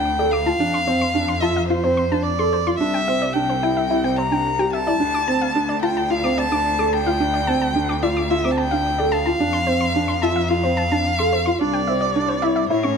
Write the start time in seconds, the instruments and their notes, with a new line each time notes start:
Already playing: cello section D2, violin G5
0.19 felt piano A4, synth arpeggio sound D5
0.31 violin F5, synth arpeggio sound D6
0.46 felt piano F4, synth arpeggio sound A5
0.59 cello section F2, felt piano D4
0.74 synth arpeggio sound C6
0.87 felt piano C4, synth arpeggio sound C5
1.01 synth arpeggio sound C6
1.15 felt piano D4
1.28 synth arpeggio sound C6
1.41 felt piano F4, violin E5, synth arpeggio sound A5
1.56 synth arpeggio sound F5
1.68 felt piano F4, violin C5
1.84 felt piano C4, synth arpeggio sound C5
1.97 synth arpeggio sound C6
2.12 felt piano D4, synth arpeggio sound A5
2.23 violin D5
2.39 felt piano A4, synth arpeggio sound C6
2.53 synth arpeggio sound C5
2.67 felt piano F4, synth arpeggio sound C6
2.79 cello section C2, felt piano D4, violin E5
2.94 synth arpeggio sound G5
3.08 felt piano C4, synth arpeggio sound E5
3.22 synth arpeggio sound D5
3.33 felt piano D4, violin G5
3.49 synth arpeggio sound C5
3.63 felt piano E4, synth arpeggio sound G5
3.77 synth arpeggio sound E5
3.90 felt piano E4
4.04 felt piano C4, synth arpeggio sound G5
4.16 synth arpeggio sound C5, violin A#5
4.31 felt piano D4, synth arpeggio sound G5
4.59 felt piano G4, synth arpeggio sound G5
4.71 synth arpeggio sound E5, violin A5
4.86 felt piano E4, synth arpeggio sound D5
5.00 cello section D2, felt piano D4
5.14 synth arpeggio sound D6
5.28 felt piano C4, synth arpeggio sound A5
5.42 synth arpeggio sound F5
5.55 felt piano D4
5.69 synth arpeggio sound D5
5.82 felt piano F4, violin G5, synth arpeggio sound A5
5.97 synth arpeggio sound A5
6.10 felt piano F4, violin F5
6.24 felt piano C4, synth arpeggio sound D6
6.38 synth arpeggio sound D5, violin A5
6.51 felt piano D4, synth arpeggio sound D6
6.79 felt piano A4, synth arpeggio sound D6
6.93 violin G5, synth arpeggio sound A5
7.07 felt piano F4, synth arpeggio sound F5
7.20 felt piano D4
7.34 synth arpeggio sound D5
7.47 felt piano C4, synth arpeggio sound A5
7.62 synth arpeggio sound A5
7.75 felt piano D4
7.89 synth arpeggio sound D6
8.03 felt piano F4, synth arpeggio sound D5, violin F5
8.17 synth arpeggio sound D6
8.30 felt piano F4, violin E5
8.44 felt piano C4, synth arpeggio sound D6
8.51 violin A5
8.56 violin G5, synth arpeggio sound A5
8.71 felt piano D4, synth arpeggio sound F5
8.98 felt piano A4, synth arpeggio sound D5
9.12 violin F5, synth arpeggio sound A5
9.26 felt piano F4, synth arpeggio sound A5
9.40 cello section F2, felt piano D4
9.53 synth arpeggio sound C6
9.67 felt piano C4, synth arpeggio sound C5
9.81 synth arpeggio sound C6
9.96 felt piano D4
10.08 synth arpeggio sound C6
10.22 felt piano F4, violin E5, synth arpeggio sound A5
10.36 synth arpeggio sound F5
10.49 felt piano F4, violin F5
10.64 felt piano C4, synth arpeggio sound C5
10.77 synth arpeggio sound A5
10.92 felt piano D4, synth arpeggio sound A5
11.19 felt piano A4, synth arpeggio sound C6
11.33 synth arpeggio sound C5
11.46 felt piano F4, synth arpeggio sound C6
11.59 cello section C2, felt piano D4, violin D5
11.74 synth arpeggio sound G5
11.87 felt piano C4, synth arpeggio sound E5
12.01 synth arpeggio sound D5
12.16 felt piano D4
12.28 synth arpeggio sound C5
12.42 felt piano E4, synth arpeggio sound E5
12.56 synth arpeggio sound E5
12.69 cello section A2, felt piano E4, violin C#5
12.83 felt piano C#4, synth arpeggio sound C#6